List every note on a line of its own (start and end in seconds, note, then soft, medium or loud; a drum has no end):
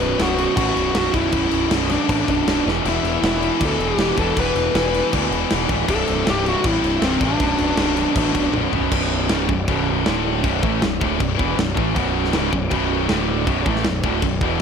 0.00 0.14 B0 loud
0.00 0.17 B1 medium
0.00 0.18 F#2 loud
0.00 0.19 B2 loud
0.00 0.21 B4 loud
0.18 0.46 B0 loud
0.18 0.36 B1 medium
0.18 0.36 F#2 loud
0.18 0.37 B2 loud
0.18 0.56 F#4 loud
0.18 snare loud
0.18 crash medium
0.37 0.55 B1 medium
0.37 0.56 F#2 medium
0.37 0.56 B2 medium
0.37 crash medium
0.56 0.70 A1 loud
0.56 0.93 B1 loud
0.56 0.94 F#2 loud
0.56 0.94 B2 loud
0.56 0.96 F#4 loud
0.56 kick loud
0.56 crash medium
0.77 0.90 B0 loud
0.77 crash medium
0.94 1.08 B0 loud
0.94 1.12 B1 medium
0.94 1.13 F#2 loud
0.94 1.13 B2 loud
0.94 1.15 F#4 loud
0.94 snare loud
0.94 crash medium
1.13 1.28 B0 medium
1.13 1.31 B1 medium
1.13 1.32 F#2 medium
1.13 1.32 B2 medium
1.13 1.68 E4 loud
1.13 kick loud
1.13 crash medium
1.32 1.46 B0 loud
1.32 1.68 B1 loud
1.32 1.69 F#2 loud
1.32 1.70 B2 loud
1.32 kick loud
1.32 crash medium
1.51 1.65 B0 loud
1.51 crash medium
1.69 1.96 B0 loud
1.69 1.88 B1 loud
1.69 1.88 F#2 loud
1.69 1.89 B2 loud
1.69 snare loud
1.69 crash loud
1.89 2.07 B1 medium
1.89 2.07 F#2 medium
1.89 2.08 B2 medium
1.89 2.29 D4 loud
1.89 crash medium
2.08 2.22 A1 loud
2.08 2.45 B1 loud
2.08 2.46 F#2 loud
2.08 2.47 B2 loud
2.08 kick loud
2.08 crash loud
2.28 2.41 B0 loud
2.28 2.64 D4 medium
2.28 kick medium
2.28 crash medium
2.47 2.60 B0 loud
2.47 2.64 B1 medium
2.47 2.65 F#2 medium
2.47 2.64 B2 loud
2.47 snare loud
2.47 crash loud
2.65 2.79 E1 medium
2.65 2.83 E2 medium
2.65 2.83 B2 loud
2.65 2.84 E3 loud
2.65 snare medium
2.84 2.98 E1 loud
2.84 3.22 E2 loud
2.84 3.22 B2 loud
2.84 3.23 E3 loud
2.84 crash medium
2.89 3.24 E4 loud
3.03 3.17 E1 medium
3.03 crash medium
3.22 3.49 E1 loud
3.22 3.40 E2 medium
3.22 3.40 B2 loud
3.22 3.41 E3 loud
3.22 3.63 E4 loud
3.22 snare loud
3.22 crash medium
3.40 3.58 E2 medium
3.40 3.59 B2 medium
3.40 3.61 E3 loud
3.40 crash medium
3.60 3.74 D2 medium
3.60 3.97 E2 loud
3.60 3.98 B2 loud
3.60 3.99 E3 loud
3.60 kick loud
3.60 crash loud
3.65 3.84 A4 loud
3.79 3.92 E1 loud
3.79 crash medium
3.84 4.20 G4 loud
3.97 4.11 E1 loud
3.97 4.16 E2 medium
3.97 4.16 B2 loud
3.97 4.18 E3 loud
3.97 snare loud
3.97 crash medium
4.17 4.31 E1 loud
4.17 4.35 E2 medium
4.17 4.35 B2 medium
4.17 4.37 E3 loud
4.17 4.38 A4 loud
4.17 kick medium
4.17 crash medium
4.36 4.50 E1 loud
4.36 4.72 E2 medium
4.36 4.73 B2 loud
4.36 4.75 E3 loud
4.36 5.10 B4 loud
4.36 kick loud
4.36 crash medium
4.55 4.68 E1 medium
4.55 crash medium
4.73 5.01 E1 loud
4.73 4.92 E2 medium
4.73 4.92 B2 medium
4.73 4.94 E3 loud
4.73 snare loud
4.73 crash medium
4.93 5.11 E2 medium
4.93 5.12 B2 medium
4.93 5.12 E3 loud
4.93 crash medium
5.12 5.26 D2 medium
5.12 5.50 E2 loud
5.12 5.51 B2 loud
5.12 5.51 E3 loud
5.12 kick loud
5.12 crash loud
5.31 5.44 E1 loud
5.31 crash medium
5.50 5.65 E1 loud
5.50 5.69 E2 medium
5.50 5.70 B2 loud
5.50 5.70 E3 medium
5.50 snare loud
5.50 crash medium
5.69 5.83 D1 medium
5.69 5.87 E2 medium
5.69 5.88 B2 medium
5.69 5.88 E3 loud
5.69 kick medium
5.69 crash medium
5.89 6.02 C1 medium
5.89 6.24 C2 loud
5.89 6.25 G2 loud
5.89 6.25 C3 loud
5.89 6.28 A4 loud
5.89 kick loud
5.89 crash medium
6.07 6.22 C1 medium
6.07 crash medium
6.25 6.54 C1 loud
6.25 6.43 C2 medium
6.25 6.43 G2 medium
6.25 6.44 C3 loud
6.25 snare loud
6.25 crash medium
6.30 6.48 G4 loud
6.44 6.61 C2 medium
6.44 6.61 G2 medium
6.44 6.63 C3 loud
6.44 crash medium
6.49 6.66 F#4 loud
6.62 6.77 A1 loud
6.62 7.00 C2 loud
6.62 7.01 G2 loud
6.62 7.01 C3 loud
6.62 kick loud
6.62 crash medium
6.66 7.04 E4 loud
6.83 6.96 C1 loud
6.83 crash medium
7.01 7.15 C1 loud
7.01 7.19 C2 medium
7.01 7.19 G2 medium
7.01 7.20 C3 loud
7.01 7.21 C4 medium
7.01 snare loud
7.01 crash medium
7.20 7.35 A1 medium
7.20 7.38 C2 medium
7.20 7.39 G2 medium
7.20 7.39 C3 loud
7.20 kick loud
7.20 crash medium
7.25 8.51 D4 medium
7.39 7.54 B0 loud
7.39 7.76 B1 medium
7.39 7.76 F#2 loud
7.39 7.78 B2 loud
7.39 kick loud
7.39 crash medium
7.58 7.72 B0 loud
7.58 crash medium
7.77 8.04 B0 medium
7.77 7.95 B1 medium
7.77 7.96 F#2 medium
7.77 7.96 B2 loud
7.77 snare loud
7.77 crash loud
7.96 8.14 B1 medium
7.96 8.14 F#2 medium
7.96 8.15 B2 medium
7.96 crash medium
8.15 8.29 A1 loud
8.15 8.52 B1 loud
8.15 8.53 F#2 loud
8.15 8.53 B2 loud
8.15 kick loud
8.15 crash loud
8.35 8.48 B0 medium
8.35 kick medium
8.35 crash medium
8.52 8.66 B0 loud
8.52 8.71 B1 medium
8.52 8.72 F#2 medium
8.52 8.73 B2 medium
8.52 high tom medium
8.72 8.86 B0 medium
8.72 8.90 B1 medium
8.72 8.90 F#2 medium
8.72 8.91 B2 medium
8.72 floor tom loud
8.92 9.27 B0 loud
8.92 9.28 B1 medium
8.92 9.29 F#2 loud
8.92 9.29 B2 loud
8.92 kick loud
8.92 crash loud
8.92 crash medium
9.29 9.47 C#1 loud
9.29 9.47 C#2 loud
9.29 9.48 G#2 loud
9.29 9.48 C#3 loud
9.29 snare loud
9.29 crash medium
9.49 9.67 B0 medium
9.49 9.64 B1 medium
9.49 9.64 F#2 medium
9.49 kick loud
9.68 10.03 B0 loud
9.68 10.05 B1 medium
9.68 10.06 F#2 loud
9.68 10.06 B2 loud
9.68 kick loud
9.68 crash medium
10.06 10.41 D1 loud
10.06 10.43 D2 loud
10.06 10.43 A2 loud
10.06 10.44 D3 loud
10.06 snare loud
10.06 crash medium
10.44 10.61 B0 loud
10.44 10.62 B1 medium
10.44 10.62 F#2 loud
10.44 10.62 B2 loud
10.44 kick loud
10.44 crash medium
10.62 10.80 A1 loud
10.62 10.80 A2 medium
10.62 10.81 E3 medium
10.62 10.81 A3 loud
10.62 kick loud
10.81 10.99 B0 medium
10.81 10.96 B1 medium
10.81 10.96 F#2 medium
10.81 snare loud
10.81 crash medium
11.00 11.18 D1 loud
11.00 11.19 D2 medium
11.00 11.19 A2 loud
11.00 11.19 D3 loud
11.00 kick loud
11.19 11.37 B0 medium
11.19 11.34 B1 medium
11.19 11.34 F#2 medium
11.19 kick loud
11.19 crash medium
11.37 11.56 E1 loud
11.37 11.56 E2 medium
11.37 11.56 B2 loud
11.37 11.56 E3 loud
11.37 kick loud
11.57 11.74 B0 medium
11.57 11.72 B1 medium
11.57 11.72 F#2 medium
11.57 snare loud
11.57 crash medium
11.75 11.94 A1 loud
11.75 11.93 A2 medium
11.75 11.94 E3 loud
11.75 11.94 A3 medium
11.75 kick loud
11.94 12.31 B0 medium
11.94 12.31 B1 loud
11.94 12.32 F#2 loud
11.94 12.33 B2 loud
11.94 kick loud
11.94 crash medium
12.25 snare soft
12.32 12.50 C#1 loud
12.32 12.50 C#2 loud
12.32 12.51 G#2 loud
12.32 12.51 C#3 loud
12.32 snare loud
12.32 crash medium
12.52 12.70 B0 medium
12.52 12.67 B1 medium
12.52 12.67 F#2 medium
12.52 kick medium
12.70 13.06 B0 loud
12.70 13.08 B1 loud
12.70 13.08 F#2 loud
12.70 13.08 B2 loud
12.70 kick loud
12.70 crash medium
13.09 13.44 D1 loud
13.09 13.46 D2 loud
13.09 13.46 A2 loud
13.09 13.47 D3 loud
13.09 snare loud
13.09 crash medium
13.47 13.65 B0 loud
13.47 13.65 B1 loud
13.47 13.65 F#2 loud
13.47 13.65 B2 loud
13.47 kick loud
13.47 crash medium
13.65 13.83 A1 loud
13.65 13.84 A2 medium
13.65 13.84 E3 medium
13.65 13.85 A3 loud
13.65 kick loud
13.76 snare soft
13.84 14.02 B0 medium
13.84 14.00 B1 medium
13.84 14.00 F#2 medium
13.84 snare loud
13.84 crash medium
14.04 14.21 D1 medium
14.04 14.22 D2 medium
14.04 14.22 A2 medium
14.04 14.22 D3 medium
14.04 kick loud
14.22 14.40 B0 medium
14.22 14.38 B1 medium
14.22 14.38 F#2 medium
14.22 kick loud
14.22 crash medium
14.41 14.58 E1 loud
14.41 14.60 E2 loud
14.41 14.61 B2 loud
14.41 14.61 E3 loud
14.41 kick loud